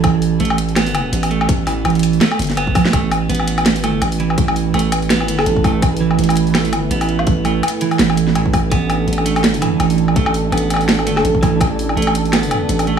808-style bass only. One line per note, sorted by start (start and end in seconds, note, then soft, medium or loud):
0.04 0.39 A1 loud
0.40 1.11 A1 loud
1.13 1.48 A1 loud
1.49 1.84 A1 loud
1.85 2.20 A1 loud
2.39 2.74 G1 loud
2.93 3.28 A1 loud
3.30 3.80 A1 loud
3.80 4.01 G#1 loud
4.02 4.37 A1 loud
4.38 4.73 A1 loud
4.74 5.24 A1 medium
5.24 5.45 G#1 medium
5.46 5.81 A1 loud
5.82 6.17 A1 loud
6.19 6.69 A1 loud
6.69 6.90 G#1 loud
6.91 7.26 A1 loud
7.27 7.62 A1 loud
7.99 8.70 A1 loud
8.71 9.06 A1 loud
9.08 9.79 A1 loud
9.80 10.15 A1 loud
10.16 10.51 A1 loud
10.52 11.02 A1 medium
11.02 11.23 G#1 medium
11.25 11.59 A1 loud
11.61 11.96 A1 loud
11.97 12.68 A1 loud
12.69 12.99 A1 loud